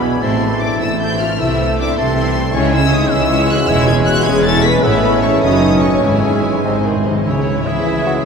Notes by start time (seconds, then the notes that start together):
Already playing: B1 E2 B2 B3 D4 G#4 B5
0.03 E4 G#5
0.22 A1 A2 E3 A3 C4 E4 C5 E5 A5 C6
0.42 E3 A3 C4 A4 C5
0.61 C4 D4 E4 C5 E5 D6
0.81 A1 A2 A3 C4 E4 A4 C5 E6
1.01 C4 E4 G4 A4 C5 E5 G6
1.20 A3 C4 E4 F4 A4 C5 F6
1.40 C2 C3 C4 E4 C5 E5 E6
1.59 A3 C4 A4 C5
1.78 A3 C4 D4 E4 C5 E5 D6
1.97 C2 C3 A3 C4 E4 A4 C5 A5 C6
2.16 C4 E4 A4 C5 E5
2.35 A3 C4 E4 A4 C5
2.53 C#2 C#3 E3 G#3 C#4 E4 C#5 E5 G#5 C#6
2.73 G#3 C#4 E4 G#4 C#5 E6
2.92 G#3 C#4 D#4 E4 C#5 E5 D#6
3.11 C#2 C#3 C#4 E4 G#4 C#5 E5 E6
3.29 G#3 E4 G#4 C#5 E5
3.49 C#4 E4 F#4 G#4 C#5 F#6
3.68 E1 E2 E3 G#3 E4 C#5 E5 G#5 E6
3.87 C#4 G#4 C#5 G#6
4.05 G#3 E4 F#4 C#5 E5 F#6
4.25 E1 E2 C#4 G#4 C#5 G#5 G#6
4.44 G#3 E4 A4 C#5 E5 A6
4.64 C#4 G#4 B4 C#5 B6
4.82 A1 A2 E3 A3 B3 C#4 E4 C#5 E5 B5
5.03 C#4 A4 C#5
5.22 A3 C#4 E4 A4 C#5 E5 C#6
5.43 F#1 F#2 D#3 D#4 F#4 C#5 D#5 D#6
5.62 C#4 D#4 A4 C#5
5.82 C#4 D#4 F#4 A4 C#5 D#5 C#6
6.02 G#1 G#2 E3 G#3 E4 C#5 E5 G#5
6.23 C#4 G#4 E5
6.43 G#3 E4 G#4 C#5
6.64 G#1 G#2 C3 D#3 G#3 C4 D#4 C5 D#5
6.73 G#2
6.81 G#2 C5
6.85 D#3 C4 G#4
6.89 G#2
6.96 G#2
7.04 G#2 C3 G#3 D#4 G#4 C5 D#5
7.12 G#2
7.25 C#2 C#3 E3 G#3 C#4 E4 C#5
7.36 C#4
7.46 G#3
7.56 E4
7.65 E3 E4 G#4 E5
7.76 E4
7.86 E4 E5
7.96 G#5
8.06 F#4 E5
8.16 G#4